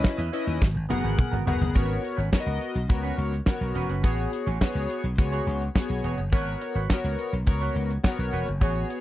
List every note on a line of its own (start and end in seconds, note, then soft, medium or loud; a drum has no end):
0.00 0.20 C#4 loud
0.00 0.20 E4 loud
0.00 0.21 B4 loud
0.00 0.21 D#5 loud
0.04 kick loud
0.04 snare loud
0.18 0.29 E2 loud
0.18 0.31 E4 medium
0.18 0.32 B4 medium
0.18 0.33 D#5 medium
0.18 closed hi-hat medium
0.32 0.61 C#4 medium
0.32 0.46 E4 medium
0.32 0.62 E4 medium
0.32 0.46 B4 medium
0.32 0.62 B4 medium
0.32 0.62 D#5 loud
0.32 0.45 D#5 medium
0.32 closed hi-hat medium
0.46 0.58 D#2 medium
0.46 muted clean electric guitar stroke soft
0.46 closed hi-hat soft
0.61 0.72 G#1 loud
0.61 muted clean electric guitar stroke soft
0.61 kick loud
0.61 snare medium
0.75 0.86 G#1 medium
0.75 muted clean electric guitar stroke medium
0.89 1.01 F#1 medium
0.89 1.03 B3 medium
0.89 1.34 B3 medium
0.89 1.03 F#4 medium
0.89 1.35 G#4 medium
0.89 1.02 A#4 medium
0.89 1.35 A#4 medium
0.89 1.35 F#5 loud
0.89 high tom medium
1.03 1.15 G#1 medium
1.03 1.16 B3 medium
1.03 1.17 F#4 medium
1.03 1.17 A#4 medium
1.17 muted clean electric guitar stroke soft
1.17 kick loud
1.17 mid tom loud
1.31 1.43 G#1 loud
1.31 1.44 B3 medium
1.31 1.45 F#4 medium
1.31 1.47 A#4 medium
1.31 mid tom medium
1.46 1.58 F#1 loud
1.46 1.59 B3 medium
1.46 1.74 B3 loud
1.46 1.60 F#4 medium
1.46 1.76 G#4 medium
1.46 1.74 A#4 medium
1.46 1.60 B4 medium
1.46 1.76 F#5 loud
1.46 floor tom loud
1.60 1.72 F#1 medium
1.60 muted clean electric guitar stroke medium
1.60 floor tom loud
1.75 1.97 G#1 loud
1.75 2.20 B3 medium
1.75 2.01 C#4 medium
1.75 2.20 F#4 medium
1.75 2.02 F#4 medium
1.75 2.20 A#4 medium
1.75 2.02 B4 medium
1.75 2.20 C#5 loud
1.75 kick loud
1.75 closed hi-hat medium
1.90 closed hi-hat soft
2.03 muted clean electric guitar stroke soft
2.03 closed hi-hat medium
2.17 2.29 G#1 medium
2.17 2.30 C#4 medium
2.17 2.30 F#4 medium
2.17 2.31 B4 medium
2.17 closed hi-hat medium
2.31 2.77 B3 loud
2.31 2.77 F#4 medium
2.31 2.77 A#4 medium
2.31 2.40 C#5 medium
2.31 muted clean electric guitar stroke soft
2.31 kick medium
2.31 snare loud
2.40 2.81 D#5 loud
2.46 2.57 C#2 medium
2.46 muted clean electric guitar stroke soft
2.46 closed hi-hat medium
2.61 closed hi-hat medium
2.74 2.86 B1 medium
2.74 muted clean electric guitar stroke medium
2.74 closed hi-hat soft
2.89 3.11 C#2 medium
2.89 3.34 B3 medium
2.89 3.34 F#4 medium
2.89 3.34 A#4 medium
2.89 3.34 C#5 medium
2.89 muted clean electric guitar stroke soft
2.89 kick loud
2.89 closed hi-hat medium
3.03 3.16 C#4 medium
3.03 3.17 F#4 medium
3.03 3.18 B4 medium
3.03 closed hi-hat medium
3.18 3.40 C#2 medium
3.18 muted clean electric guitar stroke soft
3.18 closed hi-hat medium
3.32 muted clean electric guitar stroke soft
3.32 closed hi-hat soft
3.46 3.91 B3 medium
3.46 3.91 F#4 medium
3.46 3.91 A#4 medium
3.46 3.92 C#5 medium
3.46 muted clean electric guitar stroke soft
3.46 kick loud
3.46 snare loud
3.61 3.72 B1 medium
3.61 muted clean electric guitar stroke soft
3.61 closed hi-hat medium
3.75 3.86 E1 medium
3.75 3.90 C#4 medium
3.75 3.89 F#4 medium
3.75 3.88 B4 medium
3.75 closed hi-hat medium
3.89 4.04 F#1 medium
3.89 4.03 C#4 medium
3.89 4.02 F#4 medium
3.89 4.03 B4 medium
3.89 closed hi-hat medium
4.03 4.25 A1 loud
4.03 4.48 B3 medium
4.03 4.30 F#4 medium
4.03 4.49 F#4 medium
4.03 4.49 G#4 medium
4.03 4.31 G#4 medium
4.03 4.49 C#5 medium
4.03 4.31 C#5 medium
4.03 kick loud
4.03 closed hi-hat medium
4.18 closed hi-hat soft
4.32 muted clean electric guitar stroke soft
4.32 closed hi-hat medium
4.46 4.58 A1 loud
4.46 4.60 F#4 soft
4.46 4.60 G#4 medium
4.46 4.60 C#5 medium
4.46 closed hi-hat medium
4.61 5.06 B3 loud
4.61 5.06 F#4 medium
4.61 5.06 G#4 medium
4.61 5.06 C#5 loud
4.61 kick medium
4.61 snare loud
4.75 4.86 C#2 loud
4.75 muted clean electric guitar stroke soft
4.75 closed hi-hat medium
4.90 closed hi-hat medium
5.04 5.15 B1 medium
5.04 muted clean electric guitar stroke medium
5.04 closed hi-hat soft
5.18 5.40 C#2 medium
5.18 5.63 B3 medium
5.18 5.63 F#4 medium
5.18 5.63 G#4 medium
5.18 5.63 C#5 medium
5.18 muted clean electric guitar stroke soft
5.18 kick loud
5.18 closed hi-hat medium
5.32 5.46 F#4 medium
5.32 5.46 G#4 medium
5.32 5.47 C#5 medium
5.32 closed hi-hat medium
5.47 5.68 C#2 medium
5.47 muted clean electric guitar stroke soft
5.47 closed hi-hat medium
5.61 muted clean electric guitar stroke soft
5.61 closed hi-hat medium
5.75 6.20 B3 medium
5.75 6.20 F#4 medium
5.75 6.20 G#4 medium
5.75 6.20 C#5 loud
5.75 kick loud
5.75 snare loud
5.90 6.00 B1 medium
5.90 muted clean electric guitar stroke soft
5.90 closed hi-hat medium
6.04 6.15 E1 loud
6.04 6.21 F#4 medium
6.04 6.18 G#4 medium
6.04 6.17 C#5 medium
6.04 closed hi-hat medium
6.18 6.29 F#1 medium
6.18 muted clean electric guitar stroke soft
6.18 closed hi-hat medium
6.32 6.54 G#1 loud
6.32 6.77 B3 medium
6.32 6.77 F#4 medium
6.32 6.59 F#4 medium
6.32 6.77 A#4 medium
6.32 6.60 B4 loud
6.32 6.77 C#5 loud
6.32 6.60 C#5 medium
6.32 kick loud
6.32 closed hi-hat medium
6.46 closed hi-hat soft
6.61 muted clean electric guitar stroke soft
6.61 closed hi-hat medium
6.75 6.86 G#1 medium
6.75 6.88 F#4 soft
6.75 6.89 B4 medium
6.75 6.88 C#5 medium
6.75 closed hi-hat medium
6.90 7.34 B3 medium
6.90 7.34 F#4 medium
6.90 7.35 A#4 medium
6.90 7.35 C#5 loud
6.90 muted clean electric guitar stroke soft
6.90 kick loud
6.90 snare loud
7.04 7.15 C#2 loud
7.04 muted clean electric guitar stroke soft
7.04 closed hi-hat medium
7.18 closed hi-hat medium
7.32 7.44 B1 medium
7.32 muted clean electric guitar stroke soft
7.32 closed hi-hat soft
7.46 7.68 C#2 medium
7.46 7.91 B3 medium
7.46 7.91 F#4 medium
7.46 7.92 A#4 medium
7.46 7.92 C#5 medium
7.46 muted clean electric guitar stroke soft
7.46 kick loud
7.46 closed hi-hat medium
7.61 7.74 F#4 medium
7.61 7.75 B4 medium
7.61 7.75 C#5 medium
7.61 closed hi-hat medium
7.75 7.97 C#2 medium
7.75 muted clean electric guitar stroke soft
7.75 closed hi-hat medium
7.90 muted clean electric guitar stroke medium
7.90 closed hi-hat medium
8.04 8.48 B3 loud
8.04 8.49 F#4 medium
8.04 8.49 A#4 medium
8.04 8.49 C#5 loud
8.04 kick loud
8.04 snare loud
8.18 8.29 B1 medium
8.18 muted clean electric guitar stroke medium
8.18 closed hi-hat medium
8.33 8.44 E1 medium
8.33 8.49 F#4 medium
8.33 8.47 B4 medium
8.33 8.45 C#5 medium
8.33 closed hi-hat medium
8.47 8.61 F#1 medium
8.47 muted clean electric guitar stroke medium
8.47 closed hi-hat medium
8.61 8.83 A1 loud
8.61 9.01 B3 medium
8.61 8.87 F#4 medium
8.61 9.01 F#4 medium
8.61 8.88 G#4 medium
8.61 9.01 G#4 medium
8.61 9.01 C#5 medium
8.61 8.88 C#5 medium
8.61 kick loud
8.61 closed hi-hat medium
8.75 closed hi-hat medium
8.90 muted clean electric guitar stroke soft
8.90 closed hi-hat medium